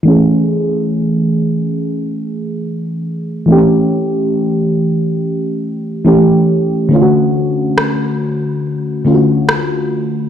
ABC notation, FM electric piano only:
X:1
M:4/4
L:1/8
Q:1/4=70
K:A
V:1 name="FM electric piano"
[E,A,CG]8 | [E,A,=C^C=G]6 [E,A,CG]2 | [D,A,C=F^F]4- [D,A,C=F^F] [D,A,C=F^F]3 |]